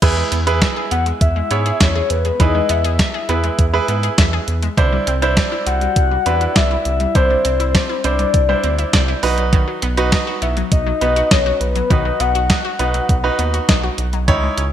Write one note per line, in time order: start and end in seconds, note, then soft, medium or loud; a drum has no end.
0.02 0.23 E2 loud
0.02 0.16 E3 loud
0.02 0.37 E4 medium
0.02 0.37 G#4 medium
0.02 0.37 B4 loud
0.02 kick loud
0.02 closed hi-hat medium
0.02 crash loud
0.17 0.31 G#3 medium
0.32 0.63 E2 loud
0.32 0.46 B3 medium
0.32 closed hi-hat medium
0.47 1.27 E4 medium
0.47 0.61 G#4 medium
0.47 1.27 G#4 medium
0.47 1.27 B4 loud
0.47 closed hi-hat medium
0.62 0.76 E5 medium
0.62 kick loud
0.62 snare loud
0.62 closed hi-hat medium
0.76 0.91 G#4 medium
0.91 1.12 E2 loud
0.91 1.05 B3 medium
0.91 1.05 F#5 loud
0.91 closed hi-hat medium
1.06 1.20 G#3 medium
1.06 closed hi-hat soft
1.21 1.42 E2 loud
1.21 1.82 E5 loud
1.21 kick loud
1.21 closed hi-hat medium
1.36 1.50 G#3 medium
1.51 1.72 G#2 medium
1.51 1.65 B3 medium
1.51 2.20 E4 medium
1.51 2.20 G#4 medium
1.51 2.20 C#5 medium
1.51 closed hi-hat medium
1.66 1.80 G#4 medium
1.66 closed hi-hat medium
1.80 2.01 E2 loud
1.80 2.12 C#5 loud
1.80 1.95 E5 medium
1.80 kick loud
1.80 snare loud
1.80 closed hi-hat medium
1.96 2.10 G#4 medium
2.10 2.31 E2 loud
2.10 2.42 B4 medium
2.10 closed hi-hat medium
2.25 2.39 G#3 medium
2.25 closed hi-hat soft
2.40 2.61 E2 loud
2.40 2.54 E3 medium
2.40 3.09 E4 medium
2.40 3.09 G#4 medium
2.40 3.09 B4 medium
2.40 2.71 D#5 loud
2.40 kick loud
2.40 closed hi-hat medium
2.55 2.69 G#3 medium
2.69 3.01 E2 medium
2.69 2.84 B3 medium
2.69 3.88 E5 loud
2.69 closed hi-hat medium
2.84 2.99 G#4 medium
2.84 closed hi-hat medium
2.99 3.13 E5 medium
2.99 kick loud
2.99 snare loud
2.99 closed hi-hat medium
3.14 3.28 G#4 medium
3.29 3.50 E2 medium
3.29 3.43 B3 medium
3.29 3.64 E4 medium
3.29 3.64 G#4 medium
3.29 3.64 B4 medium
3.29 closed hi-hat medium
3.44 3.58 G#3 medium
3.44 closed hi-hat soft
3.59 3.79 E2 loud
3.59 kick loud
3.59 closed hi-hat medium
3.73 3.88 G#3 medium
3.73 4.54 E4 medium
3.73 4.54 G#4 medium
3.73 4.54 B4 loud
3.88 4.09 G#2 medium
3.88 4.03 B3 medium
3.88 closed hi-hat medium
4.03 4.17 G#4 medium
4.03 closed hi-hat medium
4.18 4.39 E2 loud
4.18 4.32 E5 medium
4.18 kick loud
4.18 snare loud
4.18 closed hi-hat medium
4.33 4.47 G#4 medium
4.48 4.69 E2 loud
4.48 closed hi-hat medium
4.62 4.77 G#3 medium
4.62 closed hi-hat soft
4.77 4.98 C2 loud
4.77 4.92 D3 medium
4.77 5.12 D4 medium
4.77 5.12 E4 medium
4.77 5.12 C5 loud
4.77 kick loud
4.77 closed hi-hat medium
4.93 5.07 G3 medium
5.07 5.38 C2 loud
5.07 5.21 C4 medium
5.07 closed hi-hat medium
5.22 6.03 D4 medium
5.22 6.03 E4 medium
5.22 5.36 E4 medium
5.22 6.03 C5 loud
5.22 closed hi-hat medium
5.37 5.51 D5 medium
5.37 kick loud
5.37 snare loud
5.37 closed hi-hat medium
5.52 5.66 E4 medium
5.67 5.87 C2 loud
5.67 5.81 C4 medium
5.67 6.57 F#5 loud
5.67 closed hi-hat medium
5.81 5.96 G3 medium
5.81 closed hi-hat soft
5.96 6.17 C2 loud
5.96 kick loud
5.96 closed hi-hat medium
6.11 6.25 G3 medium
6.26 6.47 E2 medium
6.26 6.40 C4 medium
6.26 6.95 D4 medium
6.26 6.95 E4 medium
6.26 6.95 B4 medium
6.26 closed hi-hat medium
6.41 6.55 E4 medium
6.41 closed hi-hat medium
6.56 6.77 C2 loud
6.56 6.70 D5 medium
6.56 7.17 E5 loud
6.56 kick loud
6.56 snare loud
6.56 closed hi-hat medium
6.71 6.85 E4 medium
6.85 7.06 C2 loud
6.85 closed hi-hat medium
7.00 7.14 G3 medium
7.00 closed hi-hat soft
7.15 7.36 C2 loud
7.15 7.29 D3 loud
7.15 7.84 D4 medium
7.15 7.84 E4 medium
7.15 7.84 C5 medium
7.15 8.06 C5 loud
7.15 kick loud
7.15 closed hi-hat medium
7.30 7.44 G3 medium
7.45 7.76 C2 loud
7.45 7.59 C4 medium
7.45 closed hi-hat medium
7.60 7.74 E4 medium
7.60 closed hi-hat medium
7.75 7.89 D5 medium
7.75 kick loud
7.75 snare loud
7.75 closed hi-hat medium
7.89 8.03 E4 medium
8.04 8.25 C2 loud
8.04 8.18 C4 medium
8.04 8.39 D4 medium
8.04 8.39 E4 medium
8.04 8.39 C5 medium
8.04 9.23 D5 medium
8.04 closed hi-hat medium
8.19 8.33 G3 medium
8.19 closed hi-hat soft
8.34 8.55 C2 loud
8.34 kick loud
8.34 closed hi-hat medium
8.49 8.63 G3 medium
8.49 9.23 D4 medium
8.49 9.23 E4 medium
8.49 9.23 C5 medium
8.64 8.85 D2 medium
8.64 8.78 C4 medium
8.64 closed hi-hat medium
8.79 8.93 E4 medium
8.79 closed hi-hat medium
8.93 9.14 C2 loud
8.93 9.08 D5 loud
8.93 kick loud
8.93 snare loud
8.93 closed hi-hat medium
9.08 9.22 E4 medium
9.23 9.65 B1 medium
9.23 9.82 D#4 medium
9.23 9.82 F#4 medium
9.23 9.82 B4 loud
9.23 open hi-hat medium
9.38 9.52 F#3 medium
9.38 closed hi-hat soft
9.53 9.67 D#3 medium
9.53 kick loud
9.53 closed hi-hat medium
9.68 9.82 F#3 medium
9.82 10.14 B1 medium
9.82 9.97 B3 medium
9.82 closed hi-hat medium
9.97 10.78 D#4 medium
9.97 10.78 F#4 medium
9.97 10.11 F#4 medium
9.97 10.78 B4 loud
9.97 closed hi-hat medium
10.12 10.26 D#5 medium
10.12 kick loud
10.12 snare loud
10.12 closed hi-hat medium
10.27 10.41 F#4 medium
10.42 10.63 B1 loud
10.42 10.56 B3 medium
10.42 10.56 E5 medium
10.42 closed hi-hat medium
10.57 10.71 F#3 medium
10.57 closed hi-hat soft
10.72 10.92 B1 loud
10.72 11.33 D#5 loud
10.72 kick loud
10.72 closed hi-hat medium
10.87 11.01 F#3 medium
11.01 11.22 B1 medium
11.01 11.15 B3 medium
11.01 11.70 D#4 medium
11.01 11.70 F#4 medium
11.01 11.70 B4 medium
11.01 closed hi-hat medium
11.16 11.30 F#4 medium
11.16 closed hi-hat medium
11.31 11.52 B1 loud
11.31 11.60 C#5 loud
11.31 11.45 D#5 medium
11.31 kick loud
11.31 snare loud
11.31 closed hi-hat medium
11.46 11.60 F#4 medium
11.61 11.81 B1 loud
11.61 11.92 B4 loud
11.61 closed hi-hat medium
11.76 11.90 F#3 medium
11.76 closed hi-hat soft
11.90 12.11 B1 loud
11.90 12.04 D#3 loud
11.90 12.59 D#4 medium
11.90 12.59 F#4 medium
11.90 12.59 B4 medium
11.90 12.22 D#5 loud
11.90 kick loud
11.90 closed hi-hat medium
12.05 12.19 F#3 medium
12.20 12.51 B1 loud
12.20 12.34 B3 medium
12.20 13.39 F#5 loud
12.20 closed hi-hat medium
12.35 12.49 F#4 medium
12.35 closed hi-hat medium
12.50 12.64 D#5 medium
12.50 kick loud
12.50 snare loud
12.50 closed hi-hat medium
12.65 12.79 F#4 medium
12.79 13.00 B1 loud
12.79 12.94 B3 medium
12.79 13.14 D#4 medium
12.79 13.14 F#4 medium
12.79 13.14 B4 medium
12.79 closed hi-hat medium
12.94 13.09 F#3 medium
12.94 closed hi-hat soft
13.09 13.30 B1 loud
13.09 kick loud
13.09 closed hi-hat medium
13.24 13.38 F#3 medium
13.24 14.04 D#4 loud
13.24 14.04 F#4 medium
13.24 14.04 B4 loud
13.39 13.60 D#2 medium
13.39 13.53 B3 medium
13.39 closed hi-hat medium
13.54 13.68 F#4 medium
13.54 closed hi-hat medium
13.69 13.89 B1 loud
13.69 13.83 D#5 medium
13.69 kick loud
13.69 snare loud
13.69 closed hi-hat medium
13.83 13.98 F#4 medium
13.98 14.29 B1 loud
13.98 closed hi-hat medium
14.13 14.27 F#3 medium
14.13 closed hi-hat soft
14.28 14.49 C#2 loud
14.28 14.42 D#3 medium
14.28 14.62 D#4 medium
14.28 14.62 E4 medium
14.28 14.62 C#5 loud
14.28 kick loud
14.28 closed hi-hat medium
14.43 14.57 G#3 medium
14.58 14.73 C#2 loud
14.58 14.72 C#4 medium
14.58 closed hi-hat medium